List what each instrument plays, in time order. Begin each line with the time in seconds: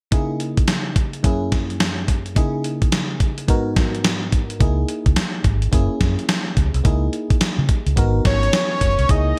0.11 fm electric piano C#3 A#3 D#4 E4 G#4, kick, closed hi-hat
0.40 closed hi-hat
0.57 kick, closed hi-hat
0.68 snare, closed hi-hat
0.96 kick, closed hi-hat
1.13 closed hi-hat
1.23 fm electric piano F#2 A#3 C#4 E4 G#4, kick, closed hi-hat
1.52 kick, snare, closed hi-hat
1.70 closed hi-hat
1.80 snare, closed hi-hat
2.08 kick, closed hi-hat
2.26 closed hi-hat
2.35 fm electric piano C#3 A#3 D#4 E4 G#4, kick, closed hi-hat
2.64 closed hi-hat
2.82 kick, closed hi-hat
2.92 snare, closed hi-hat
3.20 kick, closed hi-hat
3.38 closed hi-hat
3.47 fm electric piano G#2 B3 D#4 F#4 A#4, kick, closed hi-hat
3.76 kick, snare, closed hi-hat
3.95 closed hi-hat
4.04 snare, closed hi-hat
4.32 kick, closed hi-hat
4.50 closed hi-hat
4.60 fingered electric bass C#2, fm electric piano A#3 D#4 E4 G#4, kick, closed hi-hat
4.88 closed hi-hat
5.06 fingered electric bass C#2, kick, closed hi-hat
5.16 snare, closed hi-hat
5.44 fingered electric bass G#1, kick, closed hi-hat
5.62 closed hi-hat
5.72 fingered electric bass F#1, fm electric piano A#3 C#4 E4 G#4, kick, closed hi-hat
6.01 fingered electric bass F#2, kick, snare, closed hi-hat
6.19 closed hi-hat
6.29 snare, closed hi-hat
6.57 fingered electric bass C#2, kick, closed hi-hat
6.74 fingered electric bass C2, closed hi-hat
6.84 fingered electric bass C#2, fm electric piano A#3 D#4 E4 G#4, kick, closed hi-hat
7.13 closed hi-hat
7.30 muted fingered electric bass stroke, kick, closed hi-hat
7.41 muted fingered electric bass stroke, snare, closed hi-hat
7.58 fingered electric bass C#3
7.69 kick, closed hi-hat
7.86 fingered electric bass C#2, closed hi-hat
7.96 fingered electric bass G#1, fm electric piano B3 D#4 F#4 A#4, kick, closed hi-hat
8.25 fingered electric bass G#1, analog synth lead C#5, kick, snare, closed hi-hat
8.43 closed hi-hat
8.53 snare, closed hi-hat
8.81 fingered electric bass F#1, kick, closed hi-hat
8.99 fingered electric bass C2, closed hi-hat
9.09 fingered electric bass C#2, fm electric piano A#3 D#4 E4 G#4, analog synth lead D#5, kick, closed hi-hat